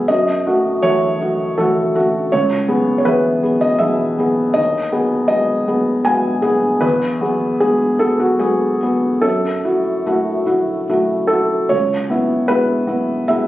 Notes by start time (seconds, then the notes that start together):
Already playing: G#3 B3 G#4 B4 E5
0.08 F#2 D#5
0.47 A3 F#4
0.82 E3 A3 F#4 C#5
1.21 A3 F#4
1.58 E3 A3 F#4 A4
1.95 A3 F#4
2.32 C#2 C#5
2.68 B3 G#4
2.98 C#5
3.05 E3 B3 G#4 B4
3.43 B3 G#4
3.61 D#5
3.79 E3 B3 G#4 E5
4.19 B3 G#4
4.54 D#2 D#5
4.92 B3 G#4
5.28 G#3 B3 G#4 D#5
5.68 B3 G#4
6.05 G#3 B3 G#4 G#5
6.42 B3 G#4
6.81 E2 B4
7.21 B3 G#4
7.60 G#3 B3 G#4
7.99 B3 G#4 A4
8.20 F#4
8.39 G#3 B3 G#4
8.83 B3 G#4
9.22 F#2 A4
9.65 E4 F#4
10.06 A3 E4 F#4
10.46 E4 F#4
10.89 A3 E4 F#4
11.27 E4 F#4 A4
11.69 C#2 C#5
12.10 B3 E4
12.48 G#3 B3 E4 B4
12.87 B3 E4
13.28 G#3 B3 E4 E5